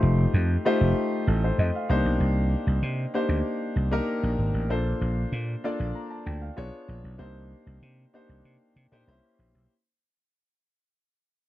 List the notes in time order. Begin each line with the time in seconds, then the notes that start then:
Already playing: A3 D#4 F4 G4 C5
0.03 F1
0.34 F2
0.65 A3 D#4 F4 G4 C5
0.81 F1
1.27 A1 A4
1.44 C5
1.58 F2 D#5
1.75 F5
1.89 C2 A#3 D4 D#4 G4 C5
2.05 B1
2.20 C2
2.67 C2
2.82 C3
3.14 A#3 D4 D#4 G4 C5
3.29 D2
3.76 C2
3.91 A#3 D4 D#4 G4 A#4
4.23 A#1
4.38 G#1
4.54 A1
4.70 A#1 A#3 D4 F4 A4 C5
5.01 A#1
5.32 A#2
5.64 A#3 D4 F4 A4 D5
5.80 A#1
5.95 A#5
6.10 A5
6.26 D2 G5
6.41 F5
6.56 B1 B3 D4 F4 G#4 C#5
6.88 A#1
7.04 B1
7.18 C2 A#3 D4 D#4 G4 C5
7.67 C2
7.82 C3
8.14 A#3 D4 D#4 G4 C5
8.29 C2
8.45 C3
8.76 C3
8.92 A#2 A#3 D4 D#4 G4 C5
9.07 C2 A#3 C#4 E4 G4 C5
9.39 A#1
9.54 B1